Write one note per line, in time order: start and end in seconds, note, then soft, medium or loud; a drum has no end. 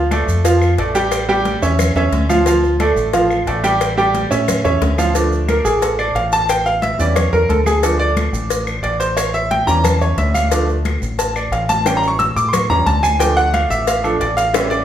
0.00 0.22 D2 medium
0.11 0.39 A3 medium
0.11 0.39 A4 medium
0.11 0.39 D5 medium
0.11 cowbell medium
0.11 high conga medium
0.11 claves medium
0.11 maracas soft
0.28 0.75 F2 loud
0.28 high conga soft
0.28 maracas medium
0.44 0.72 F3 medium
0.44 0.72 F4 medium
0.44 0.72 F5 medium
0.44 cowbell loud
0.44 high conga soft
0.44 maracas loud
0.61 high conga soft
0.61 claves medium
0.61 maracas soft
0.78 1.56 A1 medium
0.78 0.92 A3 medium
0.78 0.92 A4 medium
0.78 0.93 D5 medium
0.78 cowbell medium
0.78 high conga soft
0.78 maracas soft
0.95 1.23 G3 medium
0.95 1.23 G4 medium
0.95 1.23 G5 medium
0.95 cowbell medium
0.95 maracas medium
1.11 cowbell loud
1.11 high conga soft
1.11 claves medium
1.11 maracas medium
1.28 1.56 G3 medium
1.28 1.56 G4 loud
1.28 1.57 G5 medium
1.28 high conga soft
1.28 maracas soft
1.45 cowbell medium
1.45 high conga loud
1.45 maracas soft
1.62 1.93 E2 loud
1.62 1.90 C#4 medium
1.62 1.90 C#5 medium
1.62 1.90 E5 medium
1.62 maracas medium
1.79 cowbell loud
1.79 high conga soft
1.79 low conga medium
1.79 claves medium
1.79 maracas medium
1.95 2.11 E2 medium
1.95 2.24 C#4 medium
1.95 2.24 C#5 medium
1.95 2.24 E5 medium
1.95 high conga soft
1.95 low conga medium
1.95 maracas soft
2.12 2.91 D2 medium
2.12 cowbell medium
2.12 high conga medium
2.12 maracas soft
2.29 2.43 F3 medium
2.29 2.43 F4 medium
2.29 2.43 F5 loud
2.29 high conga medium
2.29 claves medium
2.29 maracas medium
2.46 2.74 F3 medium
2.46 2.74 F4 medium
2.46 2.75 F5 medium
2.46 cowbell loud
2.46 high conga soft
2.46 maracas loud
2.64 maracas soft
2.80 3.08 A3 medium
2.80 3.08 A4 medium
2.80 3.08 D5 medium
2.80 cowbell medium
2.80 high conga loud
2.80 claves medium
2.80 maracas soft
2.96 3.43 A1 loud
2.96 high conga soft
2.96 maracas medium
3.13 3.41 F3 medium
3.13 3.41 F4 medium
3.13 3.41 F5 medium
3.13 cowbell loud
3.13 high conga soft
3.13 maracas medium
3.31 high conga soft
3.31 claves medium
3.31 maracas soft
3.47 4.25 A1 loud
3.47 3.61 A3 medium
3.47 3.61 A4 medium
3.47 3.61 D5 medium
3.47 cowbell medium
3.47 high conga soft
3.47 maracas soft
3.64 3.91 G3 medium
3.64 3.91 G4 medium
3.64 3.92 G5 medium
3.64 cowbell medium
3.64 maracas medium
3.81 cowbell loud
3.81 high conga soft
3.81 claves medium
3.81 maracas medium
3.97 4.25 G3 medium
3.97 4.25 G4 medium
3.97 4.25 G5 medium
3.97 maracas soft
4.15 cowbell medium
4.15 high conga medium
4.15 maracas soft
4.31 4.62 A2 loud
4.31 4.58 C#4 medium
4.31 4.58 C#5 medium
4.31 4.59 E5 medium
4.31 maracas medium
4.48 cowbell loud
4.48 high conga soft
4.48 low conga medium
4.48 claves medium
4.48 maracas loud
4.64 4.80 E2 medium
4.64 4.92 C#4 medium
4.64 4.92 C#5 medium
4.64 4.92 E5 medium
4.64 high bongo medium
4.64 high conga soft
4.64 maracas soft
4.81 5.60 D2 medium
4.81 cowbell medium
4.81 high bongo loud
4.81 high conga medium
4.81 maracas soft
4.98 5.12 F3 medium
4.98 5.12 F4 medium
4.98 5.12 F5 loud
4.98 low bongo medium
4.98 high conga medium
4.98 claves medium
4.98 maracas medium
5.14 6.45 F3 medium
5.14 6.45 A3 medium
5.14 6.45 D4 medium
5.14 cowbell medium
5.14 high conga soft
5.14 maracas medium
5.32 high conga soft
5.32 maracas soft
5.48 5.65 A#4 medium
5.48 cowbell medium
5.48 high conga medium
5.48 claves medium
5.48 maracas soft
5.65 6.12 A1 loud
5.65 5.81 G#4 medium
5.65 high conga soft
5.65 maracas medium
5.82 5.98 A4 medium
5.82 cowbell loud
5.82 high conga soft
5.82 maracas loud
5.99 6.15 D5 medium
5.99 high conga soft
5.99 claves medium
5.99 maracas soft
6.15 6.94 A1 medium
6.15 6.32 F5 medium
6.15 cowbell medium
6.15 high conga soft
6.15 maracas soft
6.32 6.49 A5 loud
6.32 cowbell medium
6.32 maracas medium
6.49 6.66 G5 medium
6.49 cowbell loud
6.49 high conga soft
6.49 claves medium
6.49 maracas medium
6.66 6.82 F5 loud
6.66 high conga soft
6.66 maracas soft
6.82 6.99 E5 medium
6.82 cowbell medium
6.82 high conga medium
6.82 maracas soft
6.99 7.30 E2 loud
6.99 7.22 E3 medium
6.99 7.22 G3 medium
6.99 7.22 C#4 medium
6.99 7.16 D5 medium
6.99 maracas medium
7.16 7.32 C#5 medium
7.16 cowbell loud
7.16 high conga soft
7.16 low conga medium
7.16 claves medium
7.16 maracas medium
7.33 7.48 E2 medium
7.33 7.49 A#4 medium
7.33 high conga soft
7.33 low conga medium
7.33 maracas soft
7.49 8.28 D2 medium
7.49 7.66 A4 medium
7.49 cowbell medium
7.49 high conga medium
7.49 maracas soft
7.66 7.83 G#4 medium
7.66 high conga medium
7.66 claves medium
7.66 maracas medium
7.83 9.13 F3 medium
7.83 9.13 A3 medium
7.83 9.14 D4 medium
7.83 7.99 A4 medium
7.83 cowbell loud
7.83 maracas medium
7.99 8.10 D5 loud
7.99 maracas soft
8.17 cowbell medium
8.17 high conga loud
8.17 claves medium
8.17 maracas soft
8.33 8.80 A1 loud
8.33 high conga soft
8.33 maracas medium
8.50 cowbell loud
8.50 high conga soft
8.50 maracas medium
8.67 high conga soft
8.67 claves medium
8.67 maracas soft
8.83 9.62 A1 medium
8.83 9.00 D5 medium
8.83 cowbell medium
8.83 high conga soft
8.83 maracas soft
9.00 9.17 C5 medium
9.00 cowbell medium
9.00 maracas medium
9.17 9.33 C#5 medium
9.17 cowbell loud
9.17 high conga soft
9.17 claves medium
9.17 maracas loud
9.34 9.50 E5 loud
9.34 high conga soft
9.34 maracas soft
9.51 9.67 G5 medium
9.51 cowbell medium
9.51 high conga loud
9.51 maracas soft
9.67 10.14 E2 loud
9.67 10.47 E3 medium
9.67 10.47 G3 soft
9.67 10.48 C#4 medium
9.67 9.84 A#5 loud
9.67 maracas medium
9.84 10.01 A5 medium
9.84 cowbell loud
9.84 high conga soft
9.84 low conga medium
9.84 claves medium
9.84 maracas medium
10.01 10.18 C#5 medium
10.01 high conga soft
10.01 maracas soft
10.17 10.96 D2 medium
10.17 10.34 E5 medium
10.17 cowbell medium
10.17 high conga medium
10.17 maracas soft
10.34 10.66 F5 medium
10.34 high conga medium
10.34 claves medium
10.34 maracas medium
10.51 10.74 F3 medium
10.51 10.74 A3 medium
10.51 10.74 D4 medium
10.51 cowbell loud
10.51 maracas medium
10.69 high conga soft
10.69 maracas soft
10.85 cowbell medium
10.85 high conga medium
10.85 claves medium
10.85 maracas soft
11.02 11.49 A1 loud
11.02 high conga soft
11.02 maracas medium
11.19 11.35 A5 medium
11.19 cowbell loud
11.19 high conga soft
11.19 maracas loud
11.36 11.52 D5 medium
11.36 high conga soft
11.36 claves medium
11.36 maracas soft
11.52 12.30 A1 loud
11.52 11.69 F5 medium
11.52 cowbell medium
11.52 high conga soft
11.52 maracas soft
11.69 11.85 A5 loud
11.69 cowbell medium
11.69 high conga medium
11.69 maracas medium
11.85 12.08 E3 medium
11.85 12.08 G3 medium
11.85 12.09 C#4 medium
11.85 11.97 G5 medium
11.85 cowbell loud
11.85 high conga soft
11.85 claves medium
11.85 maracas medium
11.97 12.08 A#5 medium
12.03 high conga soft
12.03 maracas soft
12.08 12.19 C#6 medium
12.19 12.36 E6 loud
12.19 cowbell medium
12.19 high conga medium
12.19 maracas soft
12.36 12.67 A2 loud
12.36 12.53 D6 medium
12.36 maracas medium
12.48 12.51 C6 medium
12.53 12.69 C#6 loud
12.53 cowbell loud
12.53 high conga soft
12.53 low conga medium
12.53 claves medium
12.53 maracas loud
12.70 12.85 E2 medium
12.70 12.85 E3 soft
12.70 12.85 G3 soft
12.70 12.85 C#4 medium
12.70 12.86 A#5 loud
12.70 high conga soft
12.70 maracas soft
12.86 13.65 D2 loud
12.86 13.03 A5 loud
12.86 cowbell medium
12.86 high conga medium
12.86 maracas soft
13.03 13.19 G#5 loud
13.03 high conga medium
13.03 claves medium
13.03 maracas medium
13.19 14.02 F3 medium
13.19 14.02 A3 medium
13.19 14.03 D4 medium
13.19 13.36 G5 medium
13.19 cowbell loud
13.19 high conga soft
13.19 maracas loud
13.37 13.53 F#5 loud
13.37 high conga soft
13.37 maracas soft
13.54 13.70 F5 medium
13.54 cowbell medium
13.54 high conga medium
13.54 claves medium
13.54 maracas soft
13.70 14.17 A1 loud
13.70 13.87 E5 medium
13.70 high conga soft
13.70 maracas medium
13.87 14.04 F5 medium
13.87 cowbell loud
13.87 high conga soft
13.87 maracas medium
14.03 14.19 F3 medium
14.03 14.19 A3 soft
14.03 14.19 D4 medium
14.03 14.20 A4 medium
14.03 high conga soft
14.03 claves medium
14.03 maracas soft
14.21 14.85 A1 medium
14.21 14.37 D5 medium
14.21 cowbell medium
14.21 high conga soft
14.21 maracas soft
14.37 14.54 F5 loud
14.37 cowbell medium
14.37 maracas medium
14.53 14.85 E3 medium
14.53 14.85 G3 medium
14.53 14.85 C#4 medium
14.53 14.70 E5 medium
14.53 cowbell loud
14.53 high bongo loud
14.53 high conga soft
14.53 claves medium
14.53 maracas loud
14.70 14.85 D5 loud
14.70 high bongo medium
14.70 maracas soft